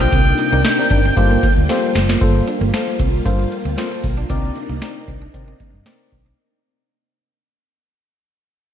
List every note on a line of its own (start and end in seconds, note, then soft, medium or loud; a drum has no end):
0.00 0.10 G3 medium
0.00 0.12 A#3 medium
0.00 2.17 A#3 medium
0.00 0.07 D4 medium
0.00 0.12 F4 medium
0.00 0.13 G4 medium
0.00 0.13 A4 medium
0.00 0.12 C5 medium
0.00 1.53 G5 loud
0.12 0.32 C2 loud
0.12 1.16 C3 medium
0.12 0.20 C4 medium
0.12 1.16 D4 medium
0.12 1.16 D#4 medium
0.12 kick loud
0.12 closed hi-hat medium
0.38 muted clean electric guitar stroke medium
0.38 closed hi-hat medium
0.52 0.61 C2 loud
0.52 0.66 C4 medium
0.52 0.59 D#4 medium
0.52 0.66 D#4 medium
0.52 0.66 G4 medium
0.52 0.66 A#4 medium
0.52 0.66 D5 medium
0.65 muted clean electric guitar stroke soft
0.65 snare loud
0.65 closed hi-hat medium
0.78 0.99 C4 medium
0.78 0.99 D#4 medium
0.78 0.99 G4 medium
0.78 0.99 A#4 medium
0.78 0.99 D5 medium
0.90 1.10 G1 medium
0.90 0.99 D4 medium
0.90 kick loud
0.90 closed hi-hat medium
1.05 1.12 C4 medium
1.16 1.36 G2 loud
1.16 2.20 G3 medium
1.16 1.45 A#3 loud
1.16 1.45 F4 medium
1.16 2.20 F4 medium
1.16 1.45 G4 loud
1.16 1.45 A4 medium
1.16 1.45 C5 loud
1.16 muted clean electric guitar stroke soft
1.16 kick loud
1.16 closed hi-hat loud
1.31 1.38 A#3 medium
1.43 1.51 A#3 medium
1.43 kick loud
1.43 closed hi-hat medium
1.57 1.66 D2 loud
1.69 1.97 A#3 loud
1.69 1.77 C4 medium
1.69 1.97 F4 medium
1.69 1.97 G4 medium
1.69 1.97 A4 medium
1.69 1.98 C5 loud
1.69 snare medium
1.69 closed hi-hat loud
1.95 2.14 F#1 medium
1.95 muted clean electric guitar stroke soft
1.95 snare loud
1.95 open hi-hat medium
2.09 2.16 A#3 medium
2.09 snare loud
2.21 2.41 G1 loud
2.21 4.28 G3 medium
2.21 2.49 A#3 loud
2.21 6.35 A#3 medium
2.21 2.49 F4 medium
2.21 4.28 F4 medium
2.21 2.49 A4 loud
2.21 2.50 C5 loud
2.21 kick loud
2.21 closed hi-hat medium
2.35 muted clean electric guitar stroke soft
2.48 2.55 D4 medium
2.48 closed hi-hat medium
2.61 2.70 G1 loud
2.61 2.68 A#3 medium
2.73 3.01 A#3 medium
2.73 3.02 F4 medium
2.73 3.02 A4 medium
2.73 3.02 C5 medium
2.73 muted clean electric guitar stroke soft
2.73 snare loud
2.73 closed hi-hat medium
2.87 2.94 A#3 medium
2.99 3.19 C2 medium
2.99 3.07 C4 medium
2.99 kick medium
2.99 closed hi-hat medium
3.25 3.45 G2 loud
3.25 3.53 A#3 medium
3.25 3.33 D4 medium
3.25 3.54 F4 medium
3.25 3.54 A4 medium
3.25 3.54 C5 loud
3.25 kick loud
3.25 closed hi-hat loud
3.39 muted clean electric guitar stroke soft
3.52 closed hi-hat medium
3.65 3.74 D2 loud
3.65 3.72 C4 medium
3.77 4.06 A#3 loud
3.77 3.86 C4 medium
3.77 4.06 F4 medium
3.77 4.06 A4 medium
3.77 4.06 C5 loud
3.77 snare loud
3.77 closed hi-hat loud
3.92 muted clean electric guitar stroke soft
4.04 4.23 B1 medium
4.04 kick medium
4.04 open hi-hat medium
4.17 4.24 D4 medium
4.29 4.49 C2 loud
4.29 6.36 C3 medium
4.29 4.58 C4 medium
4.29 4.38 C4 loud
4.29 6.36 D4 medium
4.29 6.36 D#4 loud
4.29 4.58 D#4 medium
4.29 4.58 A#4 medium
4.29 4.58 D5 loud
4.29 kick loud
4.29 closed hi-hat medium
4.56 muted clean electric guitar stroke soft
4.56 closed hi-hat medium
4.69 4.79 C2 loud
4.69 4.77 A#3 medium
4.82 5.10 C4 medium
4.82 5.10 D#4 medium
4.82 5.10 A#4 medium
4.82 5.10 D5 medium
4.82 muted clean electric guitar stroke soft
4.82 snare loud
4.82 closed hi-hat medium
5.08 5.27 C2 medium
5.08 5.16 C4 medium
5.08 kick medium
5.08 closed hi-hat medium
5.22 5.29 D4 medium
5.34 5.53 C3 loud
5.34 5.62 C4 medium
5.34 5.62 D#4 medium
5.34 5.62 A#4 medium
5.34 5.63 D5 medium
5.34 muted clean electric guitar stroke soft
5.34 kick loud
5.34 closed hi-hat loud
5.48 5.55 C4 medium
5.60 5.68 A#3 medium
5.60 kick loud
5.60 closed hi-hat medium
5.74 5.83 G2 medium
5.86 5.94 A#3 medium
5.86 6.14 C4 loud
5.86 6.14 D#4 loud
5.86 6.15 A#4 loud
5.86 6.15 D5 loud
5.86 snare loud
5.86 closed hi-hat loud
6.12 6.32 B1 medium
6.12 muted clean electric guitar stroke soft
6.12 kick medium
6.12 open hi-hat medium
6.26 6.33 C4 medium